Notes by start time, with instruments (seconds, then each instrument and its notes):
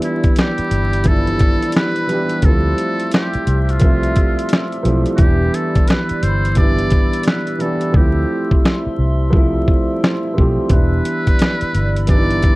Already playing: upright piano E3 G3 B3 D4 E4, ambient pad G4 D5 B5 E6
0.02 muted trumpet E4, closed hi-hat
0.24 kick, closed hi-hat
0.36 muted trumpet G4, snare, closed hi-hat
0.58 muted fingered electric bass stroke, closed hi-hat
0.71 fingered electric bass G1, closed hi-hat
0.93 closed hi-hat
1.03 upright piano E3 F3 B3, muted trumpet A4, kick, closed hi-hat
1.08 upright piano G3 D4 E4
1.27 closed hi-hat
1.39 kick, closed hi-hat
1.62 closed hi-hat
1.72 muted trumpet B4, closed hi-hat
1.77 snare
1.96 closed hi-hat
2.07 upright piano E3 G3 B3, closed hi-hat
2.11 upright piano D4 G4
2.29 closed hi-hat
2.42 fingered electric bass D2, upright piano E3 G3 A3, muted trumpet A4, ambient pad E5 C6 E6, kick, closed hi-hat
2.46 upright piano F3 C4 E4
2.78 closed hi-hat
3.00 closed hi-hat
3.11 muted trumpet G4, snare, closed hi-hat
3.34 muted fingered electric bass stroke, closed hi-hat
3.47 fingered electric bass C2, closed hi-hat
3.62 muted trumpet G4
3.69 muted trumpet F4, closed hi-hat
3.80 upright piano F3 G3 A3, kick, closed hi-hat
3.84 upright piano C4 E5
4.03 closed hi-hat
4.16 kick, closed hi-hat
4.39 closed hi-hat
4.49 closed hi-hat
4.53 snare
4.72 closed hi-hat
4.83 fingered electric bass B1, upright piano F3 G3 A3 C4, closed hi-hat
4.88 upright piano E4
5.06 closed hi-hat
5.16 fingered electric bass E1, upright piano E3 G3, muted trumpet F#4, ambient pad D5 B5 E6, kick, closed hi-hat
5.20 upright piano B3 D4 E4, muted trumpet G4
5.54 muted trumpet A4, closed hi-hat
5.75 kick, closed hi-hat
5.88 muted trumpet B4, snare, closed hi-hat
6.09 muted fingered electric bass stroke, closed hi-hat
6.23 fingered electric bass G1, muted trumpet C5, closed hi-hat
6.45 closed hi-hat
6.55 upright piano E3 G3 B3, muted trumpet D5, kick, closed hi-hat
6.59 upright piano D4 E4
6.79 closed hi-hat
6.90 kick, closed hi-hat
7.13 closed hi-hat
7.23 muted trumpet B4, closed hi-hat
7.28 snare
7.47 closed hi-hat
7.58 upright piano E3 G3 B3, muted trumpet A4, closed hi-hat
7.63 upright piano D4 G4
7.81 closed hi-hat
7.92 fingered electric bass D2, upright piano F3 G3 A3, muted trumpet G4, ambient pad E5 C6 E6, kick
7.96 upright piano C4 E4
8.51 kick
8.65 snare
8.86 muted fingered electric bass stroke
8.99 fingered electric bass C2
9.30 upright piano F3 G3 A3, kick
9.34 upright piano C4 E4
9.68 kick
10.04 snare
10.34 upright piano F3 G3 A3
10.38 fingered electric bass B1, upright piano C4 G4, kick
10.68 fingered electric bass E1, upright piano E3 G3 B3, muted trumpet B4, ambient pad D5 B5, kick, closed hi-hat
10.72 upright piano D4 E4
11.05 closed hi-hat
11.27 kick, closed hi-hat
11.39 snare, closed hi-hat
11.61 muted fingered electric bass stroke, closed hi-hat
11.74 fingered electric bass G1, closed hi-hat
11.96 closed hi-hat
12.07 upright piano E3 G3 B3, muted trumpet D5, kick, closed hi-hat
12.11 upright piano D4 D#4
12.19 upright piano E4
12.31 closed hi-hat
12.43 kick, closed hi-hat